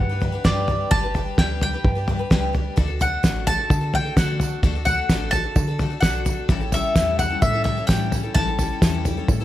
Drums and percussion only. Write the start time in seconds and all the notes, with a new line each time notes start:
0.22 floor tom
0.45 kick, snare, floor tom
0.68 floor tom
0.91 kick, floor tom
1.15 floor tom
1.38 kick, snare, floor tom
1.61 floor tom
1.85 kick, floor tom
2.08 floor tom
2.31 kick, snare, floor tom
2.55 floor tom
2.78 kick, floor tom, tambourine
3.01 floor tom, tambourine
3.24 kick, snare, floor tom, tambourine
3.47 floor tom, tambourine
3.70 kick, floor tom, tambourine
3.94 floor tom, tambourine
4.17 kick, snare, floor tom, tambourine
4.40 floor tom, tambourine
4.63 kick, floor tom, tambourine
4.86 floor tom, tambourine
5.09 kick, snare, floor tom, tambourine
5.33 floor tom, tambourine
5.56 kick, floor tom, tambourine
5.79 floor tom, tambourine
6.03 kick, snare, floor tom, tambourine
6.26 floor tom, tambourine
6.49 kick, floor tom, tambourine
6.72 floor tom, tambourine
6.96 kick, snare, floor tom, tambourine
7.19 floor tom, tambourine
7.42 kick, floor tom, tambourine
7.65 floor tom, tambourine
7.89 kick, snare, floor tom, tambourine
8.12 floor tom, tambourine
8.35 kick, floor tom, tambourine
8.59 floor tom, tambourine
8.82 kick, snare, floor tom, tambourine
9.05 floor tom, tambourine
9.28 kick, floor tom, tambourine